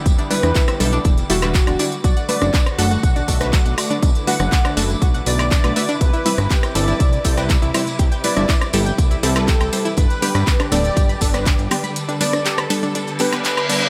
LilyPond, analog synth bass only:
\new Staff \with { instrumentName = "Analog synth bass" } { \clef bass \time 4/4 \key c \lydian \tempo 4 = 121 e,,16 r8 e,16 r8 b,,16 r16 e,,16 r16 e,,8. e,,16 r8 | b,,16 r8 fis,,16 r8 fis,,16 r16 b,,16 r16 b,,8. b,,16 r8 | b,,16 r8 fis,,16 r8 fis,,16 r16 b,,16 r16 b,,8. b,,16 r8 | c,16 r8 g,,16 r8 g,,16 r16 c,16 r16 c,8. c,16 r8 |
c,16 r8 g,,16 r8 g,,16 r16 c,16 r16 c,8. c,16 r8 | g,,16 r8 g,16 r8 d,,16 r16 g,,16 r16 g,,8. g,,16 r8 | r1 | }